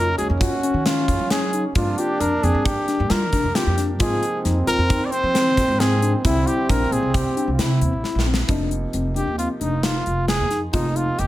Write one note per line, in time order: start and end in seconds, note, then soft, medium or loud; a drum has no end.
0.00 0.13 F2 medium
0.00 1.71 C#3 medium
0.00 1.72 F#3 medium
0.00 1.72 A#3 medium
0.00 1.72 C#4 loud
0.00 1.73 D#4 medium
0.00 0.18 A#4 loud
0.18 0.27 C#2 medium
0.18 0.29 F#4 medium
0.18 0.28 G#4 medium
0.18 closed hi-hat medium
0.30 0.47 F2 medium
0.40 0.52 F4 medium
0.40 0.82 F#4 medium
0.40 kick medium
0.40 closed hi-hat medium
0.63 0.75 C#4 medium
0.63 closed hi-hat medium
0.74 1.10 D#3 medium
0.86 1.08 C#4 medium
0.86 1.32 F4 medium
0.86 snare loud
0.86 closed hi-hat medium
1.08 1.17 F#2 medium
1.08 kick medium
1.08 closed hi-hat medium
1.19 1.63 F#3 medium
1.30 1.42 C#4 medium
1.30 1.65 G#4 loud
1.30 snare loud
1.30 closed hi-hat medium
1.53 1.65 D#4 medium
1.53 closed hi-hat medium
1.75 1.93 G2 medium
1.75 3.51 C3 medium
1.75 3.52 F3 medium
1.75 3.52 A#3 medium
1.75 3.70 D4 loud
1.75 3.53 D4 medium
1.75 1.87 F4 medium
1.75 2.00 F4 medium
1.75 kick loud
1.75 closed hi-hat medium
1.98 2.10 F4 medium
1.98 2.22 G4 medium
1.98 closed hi-hat medium
2.20 2.38 F2 medium
2.20 2.32 D4 medium
2.20 2.45 A#4 medium
2.20 closed hi-hat medium
2.43 2.52 F2 medium
2.43 2.66 C4 medium
2.43 2.67 G#4 loud
2.43 closed hi-hat medium
2.55 2.72 G2 medium
2.65 3.12 G4 medium
2.65 kick loud
2.65 closed hi-hat medium
2.88 2.99 D4 medium
2.88 snare soft
2.88 closed hi-hat medium
3.00 3.08 G2 loud
3.10 3.33 G3 loud
3.10 3.22 F4 medium
3.10 3.57 A#4 medium
3.10 snare loud
3.10 closed hi-hat medium
3.32 3.41 C3 loud
3.32 3.44 D4 medium
3.32 kick medium
3.32 closed hi-hat medium
3.44 3.53 F2 medium
3.55 3.98 C3 soft
3.55 3.98 F3 soft
3.55 3.99 A#3 soft
3.55 4.01 D4 medium
3.55 3.66 F4 medium
3.55 3.89 G4 medium
3.55 snare loud
3.55 closed hi-hat medium
3.67 4.00 F2 medium
3.78 3.89 D4 medium
3.78 snare soft
3.78 closed hi-hat medium
4.00 4.18 G#2 loud
4.00 5.54 C3 medium
4.00 5.54 F3 medium
4.00 5.55 A#3 medium
4.00 6.21 C4 loud
4.00 5.55 D#4 medium
4.00 4.23 F4 medium
4.00 4.42 G#4 medium
4.00 kick loud
4.00 closed hi-hat medium
4.23 closed hi-hat medium
4.45 4.63 F2 medium
4.45 4.56 D#4 medium
4.45 snare soft
4.45 closed hi-hat medium
4.67 4.76 D#2 medium
4.67 4.79 F4 medium
4.67 5.07 A#4 loud
4.67 closed hi-hat medium
4.78 4.96 F2 medium
4.89 5.01 D#4 medium
4.89 kick loud
4.89 closed hi-hat medium
5.05 5.13 D5 medium
5.11 5.23 C4 medium
5.11 5.81 C5 loud
5.11 closed hi-hat medium
5.23 5.57 F3 medium
5.34 5.57 C4 medium
5.34 snare medium
5.34 closed hi-hat medium
5.57 5.66 G#2 medium
5.57 6.25 C3 soft
5.57 6.25 F3 soft
5.57 6.25 A#3 soft
5.57 6.25 D#4 soft
5.57 kick medium
5.57 snare soft
5.57 closed hi-hat medium
5.68 6.12 G#2 medium
5.80 5.91 C4 medium
5.80 6.13 G#4 loud
5.80 snare loud
5.80 closed hi-hat medium
6.02 6.14 D4 medium
6.02 closed hi-hat medium
6.24 6.42 C2 medium
6.24 8.45 D3 medium
6.24 8.45 G3 medium
6.24 8.46 C4 medium
6.24 8.23 C4 loud
6.24 6.36 E4 medium
6.24 6.48 E4 medium
6.24 8.46 E4 medium
6.24 kick loud
6.24 closed hi-hat medium
6.47 6.58 E4 medium
6.47 6.71 G4 medium
6.47 closed hi-hat medium
6.69 6.87 A#1 medium
6.69 6.81 D4 medium
6.69 6.94 A#4 medium
6.69 kick loud
6.69 closed hi-hat medium
6.91 7.00 A#1 medium
6.91 7.15 C4 medium
6.91 7.16 G#4 medium
6.91 closed hi-hat medium
7.03 7.20 C2 medium
7.14 7.52 G4 medium
7.14 kick loud
7.14 closed hi-hat medium
7.37 7.48 D4 medium
7.37 closed hi-hat medium
7.48 7.57 C2 medium
7.52 7.61 F4 soft
7.58 7.83 C3 medium
7.58 7.70 E4 medium
7.58 8.27 E4 medium
7.58 snare loud
7.58 closed hi-hat medium
7.81 7.90 E2 medium
7.81 7.93 C4 medium
7.81 closed hi-hat medium
7.93 8.02 A#1 medium
8.04 8.15 E4 medium
8.04 snare medium
8.15 8.42 A#1 medium
8.15 snare medium
8.26 8.38 C4 medium
8.34 snare loud
8.48 8.84 F1 medium
8.48 10.69 C3 medium
8.48 10.69 F3 medium
8.48 10.70 A#3 medium
8.48 8.72 D4 medium
8.48 10.70 D#4 medium
8.48 kick medium
8.48 closed hi-hat medium
8.71 closed hi-hat medium
8.93 9.20 F1 medium
8.93 9.05 C4 medium
8.93 closed hi-hat medium
9.16 9.28 D4 medium
9.16 9.37 G4 medium
9.16 closed hi-hat soft
9.27 9.45 D#2 medium
9.38 9.50 C4 medium
9.38 9.49 F4 medium
9.38 closed hi-hat medium
9.61 9.96 F1 medium
9.61 9.73 D4 medium
9.61 9.85 D#4 medium
9.61 closed hi-hat soft
9.83 9.95 D#4 medium
9.83 10.28 F4 medium
9.83 snare loud
9.83 closed hi-hat medium
10.06 10.42 F1 medium
10.06 10.29 F4 medium
10.06 closed hi-hat soft
10.28 10.60 G#4 medium
10.28 snare medium
10.28 closed hi-hat medium
10.40 10.66 F2 medium
10.50 10.62 D#4 medium
10.50 snare soft
10.50 closed hi-hat soft
10.72 11.09 F1 medium
10.72 11.27 C3 medium
10.72 11.27 F3 medium
10.72 11.27 A#3 medium
10.72 10.98 D#4 medium
10.72 11.27 D#4 medium
10.72 10.85 F4 medium
10.72 kick medium
10.72 closed hi-hat medium
10.96 11.07 D#4 medium
10.96 11.20 F4 medium
10.96 closed hi-hat medium
11.18 11.27 F1 medium
11.18 11.27 G4 medium
11.18 11.27 G4 loud
11.18 closed hi-hat medium